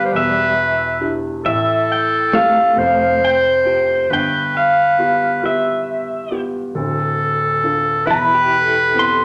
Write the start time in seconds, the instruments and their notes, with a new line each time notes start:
Already playing: felt piano G1 G2 B3 F4 G4, clean electric guitar G3 B3, pedal steel guitar F5
0.05 clarinet C5
0.13 felt piano E1 E2, clarinet B4, pedal steel guitar E5
1.00 felt piano D4 E4 G4
1.44 felt piano A1 A2, clarinet A4, pedal steel guitar E5
1.92 pedal steel guitar G5
2.33 felt piano A3 C4 G4, clean electric guitar A3, pedal steel guitar F5
2.76 felt piano F1 F2, clarinet C5
3.25 pedal steel guitar G5
3.65 felt piano A3 F4 G4
4.10 felt piano G1 G2, clarinet B4, pedal steel guitar G5
4.57 pedal steel guitar F5
4.98 felt piano B3 F4 G4
5.43 felt piano B3 F4 G4, pedal steel guitar E5
6.31 felt piano B3 F4 G4
6.75 felt piano D1 D2, clarinet A4
7.64 felt piano D4 F4 A4
8.06 felt piano E1 E2, clean electric guitar E4, clarinet B4
8.11 pedal steel guitar B5
8.34 clean electric guitar G4
8.61 clean electric guitar A4
8.95 felt piano B3 C4 E4
8.99 pedal steel guitar C6